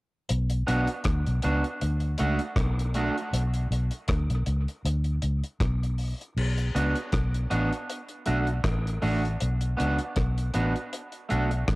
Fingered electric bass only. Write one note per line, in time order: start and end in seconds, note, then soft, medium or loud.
0.30 0.63 B1 loud
0.68 0.86 B1 medium
1.05 1.23 D2 medium
1.27 1.41 B1 medium
1.45 1.62 C#2 medium
1.82 2.15 D2 medium
2.20 2.38 C#2 medium
2.57 3.08 B1 medium
3.33 3.66 B1 loud
3.71 3.89 B1 medium
4.09 4.27 D2 medium
4.30 4.45 B1 medium
4.47 4.65 C#2 medium
4.85 5.18 D2 loud
5.23 5.41 C#2 medium
5.61 6.12 B1 medium
6.37 6.70 B1 loud
6.75 6.93 C#2 medium
7.13 7.46 B1 medium
7.51 7.69 A1 medium
8.28 8.61 B1 medium
8.64 8.98 A1 medium
9.03 9.36 A1 medium
9.42 9.75 B1 loud
9.80 9.98 C#2 medium
10.17 10.50 B1 medium
10.55 10.73 A1 medium
11.32 11.64 B1 loud
11.68 11.76 A1 medium